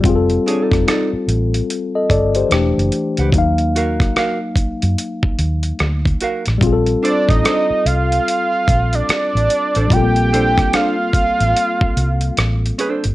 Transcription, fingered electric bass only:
X:1
M:4/4
L:1/16
Q:"Swing 16ths" 1/4=73
K:Bb
V:1 name="Fingered electric bass" clef=bass
F,,,2 z F,,, z2 A,,,2 z2 G,,,2 =E,,, ^F,,, z _D,, | E,,4 z3 _G,, z2 E,,2 D,,2 z A,,, | B,,,2 z A,,, z2 C,,2 z2 B,,,2 z A,,, z A,,, | B,,,4 z3 A,,, z2 C,,2 A,,,2 z G,,, |]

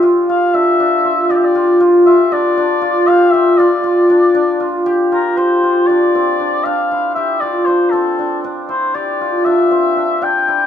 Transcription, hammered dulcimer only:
X:1
M:7/8
L:1/8
Q:1/4=118
K:Dm
V:1 name="Hammered dulcimer"
F F D D F G F | F F D D F G F | F F D D F G F | G F D C D D E |
G F D C D D E | G F D C D D E |]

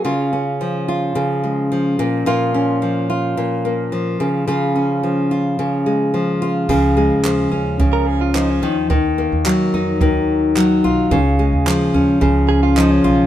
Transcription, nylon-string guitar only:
X:1
M:4/4
L:1/8
Q:1/4=109
K:C#mix
V:1 name="Nylon-string guitar" clef=bass
[C,E] C E, E C, G, E, A,, | [A,,E] C E, E A,, A, E, C, | [C,E] C E, E C, G, E, E | C, G, E, C C,2 E, D, |
D, A, F, D D,2 F, E | C, G, E, C C,2 E, E |]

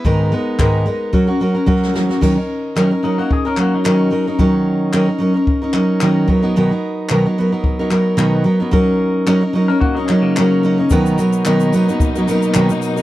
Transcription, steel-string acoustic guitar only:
X:1
M:4/4
L:1/16
Q:"Swing 16ths" 1/4=110
K:B
V:1 name="Steel-string acoustic guitar"
[G,,D,G,B,DA]2 [G,B,DA]2 [G,,D,G,B,DA]2 [G,B,DA]2 [F,CFA] [CFA] [F,CFA] [CFA] [F,CFA]2 [F,CFA] [CFA] | [D,F,CDA] [CDA]3 [D,F,CDA] [CDA] [F,CDA] [CDA]2 [CDA] [F,CDA]2 [D,F,CDA]2 [F,CDA] [CDA] | [D,F,CDA]4 [D,F,CDA] [CDA] [F,CDA] [CDA]2 [CDA] [F,CDA]2 [D,F,CDA]2 [F,B,DA] [F,B,DA] | [B,,D,F,B,DA] [F,B,DA]3 [B,,D,F,B,DA] [F,B,DA] [F,B,DA] [F,B,DA]2 [F,B,DA] [F,B,DA]2 [B,,D,F,B,DA]2 [F,B,DA] [F,B,DA] |
[F,CDA]4 [F,CDA] [CDA] [F,CDA] [CDA]2 [CDA] [F,CDA]2 [F,CDA]2 [F,CDA] [CDA] | [B,,D,F,B,DA]2 [F,B,DA]2 [B,,D,F,B,DA]2 [F,B,DA] [F,B,DA]2 [F,B,DA] [F,B,DA]2 [B,,D,F,B,DA] [F,B,DA]2 [B,DA] |]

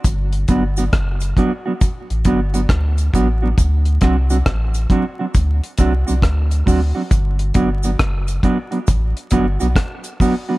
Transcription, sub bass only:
X:1
M:4/4
L:1/16
Q:"Swing 16ths" 1/4=68
K:G
V:1 name="Sub bass" clef=bass
G,,,2 G,,,2 F,,,2 z3 A,,, G,,,2 D,,2 A,,,2 | D,,2 C,,2 A,,,2 z2 D,, z C,, C,, D,,2 D,, z | G,,,2 G,,,2 F,,,2 z2 A,,, z G,,, B,,, z4 |]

